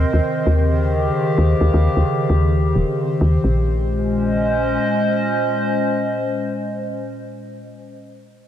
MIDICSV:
0, 0, Header, 1, 4, 480
1, 0, Start_track
1, 0, Tempo, 458015
1, 1685, Time_signature, 4, 2, 24, 8
1, 8886, End_track
2, 0, Start_track
2, 0, Title_t, "Synth texture"
2, 0, Program_c, 0, 99
2, 0, Note_on_c, 0, 60, 84
2, 0, Note_on_c, 0, 72, 86
2, 3617, Note_off_c, 0, 60, 0
2, 3617, Note_off_c, 0, 72, 0
2, 8886, End_track
3, 0, Start_track
3, 0, Title_t, "Ambient pad"
3, 0, Program_c, 1, 92
3, 0, Note_on_c, 1, 51, 73
3, 0, Note_on_c, 1, 70, 93
3, 0, Note_on_c, 1, 75, 80
3, 114, Note_on_c, 1, 49, 86
3, 179, Note_on_c, 1, 67, 81
3, 1313, Note_off_c, 1, 70, 0
3, 3606, Note_off_c, 1, 49, 0
3, 3606, Note_off_c, 1, 51, 0
3, 3606, Note_off_c, 1, 67, 0
3, 3606, Note_off_c, 1, 75, 0
3, 3606, Note_on_c, 1, 46, 74
3, 3686, Note_on_c, 1, 56, 73
3, 3762, Note_on_c, 1, 61, 78
3, 3826, Note_on_c, 1, 72, 77
3, 3899, Note_on_c, 1, 75, 80
3, 7952, Note_off_c, 1, 46, 0
3, 8032, Note_off_c, 1, 56, 0
3, 8108, Note_off_c, 1, 61, 0
3, 8172, Note_off_c, 1, 72, 0
3, 8242, Note_off_c, 1, 75, 0
3, 8886, End_track
4, 0, Start_track
4, 0, Title_t, "FM bass"
4, 0, Program_c, 2, 39
4, 141, Note_on_c, 2, 39, 84
4, 212, Note_off_c, 2, 39, 0
4, 486, Note_on_c, 2, 39, 90
4, 1151, Note_off_c, 2, 39, 0
4, 1446, Note_on_c, 2, 39, 99
4, 1617, Note_off_c, 2, 39, 0
4, 1686, Note_on_c, 2, 39, 96
4, 1776, Note_off_c, 2, 39, 0
4, 1821, Note_on_c, 2, 39, 99
4, 1973, Note_off_c, 2, 39, 0
4, 2060, Note_on_c, 2, 39, 83
4, 2131, Note_off_c, 2, 39, 0
4, 2406, Note_on_c, 2, 39, 88
4, 2880, Note_off_c, 2, 39, 0
4, 2886, Note_on_c, 2, 27, 93
4, 2976, Note_off_c, 2, 27, 0
4, 3365, Note_on_c, 2, 39, 97
4, 3537, Note_off_c, 2, 39, 0
4, 3606, Note_on_c, 2, 34, 93
4, 5004, Note_off_c, 2, 34, 0
4, 8886, End_track
0, 0, End_of_file